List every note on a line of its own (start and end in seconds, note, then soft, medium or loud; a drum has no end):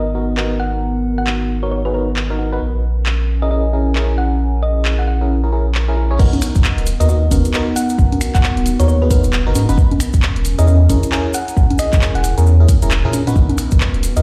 0.00 2.59 G#1 medium
0.00 2.61 B3 medium
0.00 0.11 C#4 medium
0.00 6.20 A#4 medium
0.00 3.28 F#5 medium
0.15 0.35 B3 medium
0.15 0.35 D#4 medium
0.15 0.35 F#4 medium
0.15 0.35 A#4 medium
0.37 1.60 B3 medium
0.37 1.60 D#4 medium
0.37 1.60 F#4 medium
0.37 1.60 A#4 medium
0.37 clap loud
0.60 1.15 F#5 medium
1.18 1.28 F#5 medium
1.27 clap loud
1.63 1.82 B3 medium
1.63 1.82 D#4 medium
1.63 1.82 F#4 medium
1.63 1.82 A#4 medium
1.63 1.68 C#5 medium
1.72 1.80 C#5 medium
1.85 1.92 B3 medium
1.85 1.92 D#4 medium
1.85 1.92 F#4 medium
1.85 1.92 G#4 medium
1.85 1.91 B4 medium
1.94 2.08 B3 medium
1.94 2.08 D#4 medium
1.94 2.08 F#4 medium
1.94 2.08 A#4 medium
1.94 2.03 B4 medium
2.16 clap loud
2.30 2.37 B3 medium
2.30 2.37 D#4 medium
2.30 2.37 F#4 medium
2.30 2.37 A#4 medium
2.39 2.51 B3 medium
2.39 2.50 D#4 medium
2.39 2.51 F#4 medium
2.39 2.51 A#4 medium
2.52 2.60 B3 medium
2.52 2.60 D#4 medium
2.52 2.60 F#4 medium
2.52 2.60 B4 loud
2.61 6.18 A#1 medium
2.61 7.25 C#4 medium
2.73 7.05 G#5 medium
3.06 clap loud
3.42 3.49 C#4 medium
3.42 3.49 E4 medium
3.42 3.49 G#4 medium
3.42 3.49 A#4 medium
3.42 3.48 D#5 medium
3.51 3.65 C#4 medium
3.51 3.65 E4 medium
3.51 3.65 G#4 medium
3.51 3.65 A#4 medium
3.51 3.60 D#5 medium
3.73 3.94 C#4 medium
3.73 3.94 E4 medium
3.73 3.93 G#4 medium
3.73 3.94 A#4 medium
3.95 5.18 C#4 medium
3.95 5.18 E4 medium
3.95 5.18 G#4 medium
3.95 5.18 A#4 medium
3.95 clap loud
4.18 4.74 F#5 medium
4.63 4.77 D#5 medium
4.85 clap loud
4.99 5.04 F#5 medium
5.07 5.16 F#5 medium
5.21 5.40 C#4 medium
5.21 5.40 E4 medium
5.21 5.40 G#4 medium
5.21 5.40 A#4 medium
5.44 5.50 C#4 medium
5.44 5.50 E4 medium
5.44 5.50 G#4 medium
5.44 5.50 A#4 medium
5.52 5.66 C#4 medium
5.52 5.66 E4 medium
5.52 5.66 G#4 medium
5.52 5.66 A#4 medium
5.75 clap loud
5.88 5.95 C#4 medium
5.88 5.95 E4 medium
5.88 5.95 G#4 medium
5.88 5.95 A#4 medium
5.97 6.09 C#4 medium
5.97 6.09 E4 medium
5.97 6.09 G#4 medium
5.97 6.09 A#4 medium
6.11 6.18 C#4 medium
6.11 6.18 E4 medium
6.11 6.18 G#4 medium
6.11 6.18 C#5 loud
6.19 6.31 G#1 loud
6.19 6.87 B3 loud
6.19 9.78 B3 medium
6.19 6.87 D#4 medium
6.19 6.87 F#4 medium
6.19 6.87 A#4 loud
6.19 kick loud
6.19 crash loud
6.19 maracas soft
6.33 10.60 F#5 medium
6.33 closed hi-hat medium
6.33 high conga medium
6.42 finger snap medium
6.42 open hi-hat loud
6.42 maracas medium
6.55 6.63 G#1 loud
6.55 14.22 A#4 medium
6.55 kick loud
6.55 closed hi-hat medium
6.55 maracas soft
6.64 clap loud
6.64 maracas soft
6.78 6.96 D#1 medium
6.78 closed hi-hat medium
6.86 open hi-hat loud
6.86 maracas medium
7.00 7.29 D#2 loud
7.00 7.08 B3 medium
7.00 7.08 D#4 medium
7.00 7.08 F#4 medium
7.00 7.08 A#4 medium
7.00 7.06 D#5 medium
7.00 closed hi-hat medium
7.00 maracas medium
7.09 7.23 B3 medium
7.09 7.23 D#4 medium
7.09 7.23 F#4 medium
7.09 7.23 A#4 medium
7.09 7.18 D#5 medium
7.09 maracas soft
7.31 7.43 F#1 medium
7.31 7.52 B3 medium
7.31 7.52 D#4 medium
7.31 7.52 F#4 medium
7.31 7.52 A#4 medium
7.31 kick medium
7.31 open hi-hat loud
7.31 high conga medium
7.31 maracas medium
7.45 closed hi-hat medium
7.45 maracas medium
7.54 8.76 B3 medium
7.54 8.76 D#4 medium
7.54 8.76 F#4 medium
7.54 8.76 A#4 loud
7.54 clap loud
7.54 maracas soft
7.76 8.32 F#5 medium
7.76 open hi-hat loud
7.76 maracas loud
7.89 closed hi-hat medium
7.89 maracas medium
7.98 8.10 G#1 loud
7.98 kick loud
7.98 maracas soft
8.12 closed hi-hat medium
8.12 high conga medium
8.21 finger snap medium
8.21 open hi-hat loud
8.21 maracas loud
8.35 8.42 G#1 loud
8.35 8.45 F#5 medium
8.35 kick loud
8.35 clap medium
8.35 closed hi-hat medium
8.35 maracas medium
8.43 clap loud
8.43 maracas soft
8.57 8.76 D#1 medium
8.57 closed hi-hat soft
8.66 open hi-hat loud
8.66 maracas medium
8.79 9.09 D#2 loud
8.79 8.99 B3 medium
8.79 8.99 D#4 medium
8.79 8.99 F#4 medium
8.79 8.99 A#4 medium
8.79 8.85 C#5 medium
8.79 closed hi-hat medium
8.79 maracas medium
8.88 8.97 C#5 medium
8.88 maracas soft
9.02 9.08 B3 medium
9.02 9.08 D#4 medium
9.02 9.08 F#4 medium
9.02 9.08 G#4 medium
9.02 9.07 B4 loud
9.10 9.24 B3 medium
9.10 9.24 D#4 medium
9.10 9.24 F#4 medium
9.10 9.24 A#4 medium
9.10 9.19 B4 medium
9.10 kick loud
9.10 open hi-hat loud
9.10 maracas medium
9.24 9.46 D#1 loud
9.24 closed hi-hat medium
9.24 maracas medium
9.33 clap loud
9.33 maracas soft
9.47 9.54 F#1 medium
9.47 9.53 B3 medium
9.47 9.53 D#4 medium
9.47 9.53 F#4 medium
9.47 9.53 A#4 loud
9.55 9.67 G#2 loud
9.55 9.67 B3 medium
9.55 9.67 D#4 medium
9.55 9.67 F#4 medium
9.55 9.67 A#4 medium
9.55 open hi-hat loud
9.55 high conga medium
9.55 maracas loud
9.69 9.77 F#1 loud
9.69 9.77 B3 loud
9.69 9.77 D#4 medium
9.69 9.77 F#4 medium
9.69 9.77 B4 loud
9.69 closed hi-hat medium
9.69 high conga medium
9.69 maracas medium
9.77 9.89 A#1 loud
9.77 14.00 C#4 medium
9.77 kick loud
9.77 maracas soft
9.90 14.22 G#5 medium
9.90 closed hi-hat soft
9.90 high conga medium
10.00 finger snap medium
10.00 open hi-hat loud
10.00 maracas loud
10.13 10.21 A#1 medium
10.13 kick loud
10.13 closed hi-hat medium
10.13 maracas medium
10.22 clap loud
10.22 maracas soft
10.36 10.55 E1 medium
10.36 closed hi-hat medium
10.45 open hi-hat loud
10.45 maracas medium
10.58 10.88 E2 loud
10.58 10.66 C#4 medium
10.58 10.66 E4 medium
10.58 10.66 G#4 medium
10.58 10.66 A#4 medium
10.58 10.64 D#5 medium
10.58 closed hi-hat medium
10.58 maracas medium
10.67 10.81 C#4 medium
10.67 10.81 E4 medium
10.67 10.81 G#4 medium
10.67 10.81 A#4 medium
10.67 10.76 D#5 medium
10.67 maracas soft
10.89 11.01 G#1 loud
10.89 11.10 C#4 medium
10.89 11.10 E4 medium
10.89 11.10 G#4 medium
10.89 11.10 A#4 medium
10.89 kick medium
10.89 open hi-hat loud
10.89 high conga medium
10.89 maracas medium
11.03 closed hi-hat medium
11.03 maracas medium
11.12 12.34 C#4 loud
11.12 12.34 E4 medium
11.12 12.34 G#4 medium
11.12 12.34 A#4 loud
11.12 clap loud
11.12 maracas soft
11.34 11.90 F#5 medium
11.34 open hi-hat loud
11.34 maracas loud
11.48 closed hi-hat medium
11.48 maracas medium
11.57 11.69 A#1 loud
11.57 kick loud
11.57 maracas soft
11.70 closed hi-hat medium
11.70 high conga medium
11.78 11.94 D#5 medium
11.78 finger snap medium
11.78 open hi-hat loud
11.78 maracas loud
11.93 12.00 A#1 loud
11.93 kick loud
11.93 clap medium
11.93 closed hi-hat medium
11.93 maracas soft
12.02 clap loud
12.02 maracas soft
12.15 12.34 E1 medium
12.15 12.21 F#5 medium
12.15 closed hi-hat medium
12.24 12.33 F#5 medium
12.24 open hi-hat loud
12.24 maracas loud
12.38 12.67 E2 loud
12.38 12.57 C#4 medium
12.38 12.57 E4 medium
12.38 12.57 G#4 medium
12.38 12.57 A#4 medium
12.38 closed hi-hat medium
12.38 maracas medium
12.47 maracas soft
12.60 12.67 C#4 medium
12.60 12.67 E4 medium
12.60 12.67 G#4 medium
12.60 12.67 A#4 medium
12.69 kick loud
12.69 open hi-hat loud
12.69 maracas loud
12.82 13.04 E1 loud
12.82 12.91 C#4 medium
12.82 12.91 E4 medium
12.82 12.91 G#4 medium
12.82 12.91 A#4 loud
12.82 closed hi-hat medium
12.82 maracas medium
12.91 clap loud
12.91 maracas soft
13.05 13.23 A#2 medium
13.05 13.24 C#4 medium
13.05 13.24 E4 medium
13.05 13.24 G#4 medium
13.05 13.24 A#4 loud
13.13 open hi-hat loud
13.13 high conga medium
13.13 maracas loud
13.27 13.35 A#2 loud
13.27 14.13 B3 medium
13.27 14.13 D#4 medium
13.27 14.13 F#4 medium
13.27 14.13 B4 loud
13.27 closed hi-hat medium
13.27 high conga medium
13.27 maracas medium
13.36 13.48 G#1 loud
13.36 14.22 B3 medium
13.36 kick loud
13.36 maracas soft
13.49 closed hi-hat medium
13.49 high conga medium
13.58 finger snap medium
13.58 open hi-hat loud
13.58 maracas loud
13.71 13.79 G#1 medium
13.71 kick loud
13.71 closed hi-hat medium
13.71 maracas medium
13.80 clap loud
13.80 maracas soft
13.91 14.13 D#1 medium
13.91 14.22 F#5 medium
13.91 closed hi-hat medium
14.03 open hi-hat loud
14.03 maracas loud
14.16 14.22 D#2 loud
14.16 14.22 B3 medium
14.16 14.22 D#4 medium
14.16 14.22 F#4 medium
14.16 14.22 A#4 medium
14.16 14.22 D#5 medium
14.16 closed hi-hat medium
14.16 maracas soft